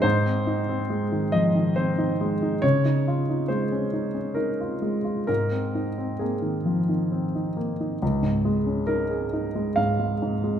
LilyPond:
\new Staff \with { instrumentName = "Grand piano" } { \time 3/4 \key des \lydian \tempo 4 = 69 << { c''4. ees''8 c''4 | des''4 c''4 bes'4 | bes'4 aes'4. r8 | r4 bes'4 f''4 | } \\ { <aes, ees'>16 c'16 ees'16 c'16 aes16 ees16 f16 ees16 c'16 ees'16 aes16 ees'16 | des16 ees'16 f'16 ees'16 aes16 des'16 ees'16 des'16 ees'16 f'16 aes16 f'16 | aes,16 c'16 ees'16 c'16 bes16 ees16 f16 ees16 c'16 ees'16 bes16 ees'16 | des,16 aes,16 aes16 des'16 ees'16 aes'16 ees'16 aes16 aes,16 aes16 aes,16 aes16 | } >> }